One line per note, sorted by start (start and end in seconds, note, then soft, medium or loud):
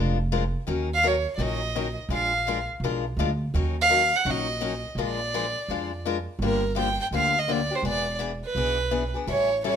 0.00 0.53 F1 medium
0.00 0.17 F3 medium
0.00 0.17 G#3 medium
0.00 0.17 D4 medium
0.00 0.17 F4 medium
0.00 0.17 A#4 medium
0.32 0.43 F3 medium
0.32 0.43 G#3 medium
0.32 0.43 D4 medium
0.32 0.43 F4 medium
0.32 0.43 A#4 medium
0.67 1.25 D#2 medium
0.67 0.88 D#3 medium
0.67 0.88 F#3 medium
0.67 0.88 C#4 medium
0.67 0.88 D#4 medium
0.67 0.89 A#4 medium
0.94 1.08 F5 loud
1.03 1.14 D#3 medium
1.03 1.14 F#3 medium
1.03 1.14 C#4 medium
1.03 1.14 D#4 medium
1.03 1.15 A#4 medium
1.03 1.35 C#5 medium
1.36 1.95 A#1 medium
1.36 1.59 D#3 medium
1.36 1.59 F#3 medium
1.36 1.60 C#4 medium
1.36 1.43 D5 medium
1.40 1.60 D#4 medium
1.40 1.60 A#4 medium
1.40 1.98 D#5 medium
1.76 1.86 D#3 medium
1.76 1.86 F#3 medium
1.76 1.86 C#4 medium
1.76 1.86 D#4 medium
1.76 1.86 A#4 medium
2.09 2.67 A#1 medium
2.09 2.31 F3 medium
2.09 2.31 G#3 medium
2.09 2.31 D4 medium
2.09 2.32 F4 medium
2.09 2.32 A#4 medium
2.13 2.65 F5 medium
2.47 2.57 F3 medium
2.47 2.58 G#3 medium
2.47 2.58 D4 medium
2.47 2.58 F4 medium
2.47 2.58 A#4 loud
2.80 3.11 B1 medium
2.80 3.04 F3 medium
2.80 3.04 G#3 medium
2.84 3.04 D4 medium
2.84 3.04 F4 medium
2.84 3.04 A#4 medium
3.17 3.48 D2 medium
3.17 3.29 F3 medium
3.17 3.29 G#3 medium
3.17 3.30 D4 medium
3.17 3.30 F4 medium
3.17 3.30 A#4 medium
3.54 4.11 D#2 medium
3.54 3.75 D#3 medium
3.54 3.75 F#3 medium
3.54 3.75 C#4 medium
3.54 3.75 D#4 medium
3.54 3.75 A#4 medium
3.81 4.17 F5 loud
3.89 4.00 D#3 medium
3.89 4.01 F#3 medium
3.89 4.01 C#4 medium
3.89 4.01 D#4 loud
3.89 4.01 A#4 medium
4.16 4.32 F#5 loud
4.25 4.83 A#1 medium
4.25 4.46 D#3 medium
4.25 4.46 F#3 medium
4.25 4.47 C#4 medium
4.25 4.47 D#4 medium
4.25 4.47 A#4 medium
4.30 4.85 D#5 medium
4.61 4.72 D#3 medium
4.61 4.72 F#3 medium
4.61 4.72 C#4 medium
4.61 4.72 D#4 medium
4.61 4.73 A#4 medium
4.95 5.53 A#1 medium
4.95 5.18 F3 medium
4.95 5.19 G#3 medium
4.95 5.19 D4 medium
4.95 5.19 F4 medium
4.95 5.19 A#4 medium
4.99 6.02 D5 medium
5.34 5.44 F3 medium
5.34 5.44 G#3 medium
5.34 5.45 D4 loud
5.34 5.45 F4 medium
5.34 5.45 A#4 medium
5.68 6.26 F2 medium
5.68 5.90 F3 medium
5.68 5.90 G#3 medium
5.68 5.91 D4 medium
5.68 5.91 F4 medium
5.68 5.91 A#4 medium
6.05 6.16 F3 medium
6.05 6.16 G#3 medium
6.05 6.16 D4 medium
6.05 6.17 F4 medium
6.05 6.17 A#4 medium
6.39 6.97 G1 medium
6.39 6.62 D3 medium
6.39 6.62 F3 medium
6.39 6.62 A#3 medium
6.39 6.62 D4 medium
6.39 6.62 G4 medium
6.44 6.76 A#4 medium
6.75 6.87 D3 medium
6.75 6.87 F3 medium
6.75 6.87 A#3 medium
6.75 6.87 D4 medium
6.75 6.87 G4 medium
6.75 6.98 G5 medium
7.01 7.07 G5 loud
7.11 7.69 D2 medium
7.11 7.33 D3 medium
7.11 7.33 F3 medium
7.11 7.34 A#3 medium
7.11 7.34 D4 medium
7.11 7.34 G4 medium
7.16 7.40 F5 loud
7.38 7.53 D#5 medium
7.48 7.59 D3 medium
7.48 7.59 F3 medium
7.48 7.59 A#3 medium
7.48 7.59 D4 medium
7.48 7.60 G4 medium
7.48 7.77 D5 medium
7.71 7.85 A#3 soft
7.71 7.84 D4 medium
7.71 7.84 G4 medium
7.75 7.85 C5 medium
7.83 8.40 E1 medium
7.83 8.05 E3 medium
7.83 8.05 B3 medium
7.83 8.05 D4 medium
7.83 8.05 G#4 medium
7.88 8.19 D5 loud
8.19 8.30 E3 medium
8.19 8.31 B3 medium
8.19 8.31 D4 medium
8.19 8.31 G#4 medium
8.45 9.11 B4 loud
8.55 9.13 B1 medium
8.55 8.77 E3 medium
8.55 8.77 B3 medium
8.55 8.77 D4 medium
8.55 8.77 G#4 medium
8.91 9.02 E3 medium
8.91 9.02 B3 medium
8.91 9.03 D4 medium
8.91 9.03 G#4 medium
9.14 9.28 B3 medium
9.14 9.28 D4 medium
9.14 9.27 G#4 soft
9.27 9.76 A1 medium
9.27 9.48 E3 medium
9.27 9.48 G3 medium
9.27 9.49 C#4 medium
9.27 9.49 E4 medium
9.27 9.49 A4 medium
9.27 9.62 C#5 loud
9.64 9.75 E3 medium
9.64 9.75 G3 medium
9.64 9.75 C#4 medium
9.64 9.75 E4 medium
9.64 9.75 A4 medium
9.64 9.76 C#5 medium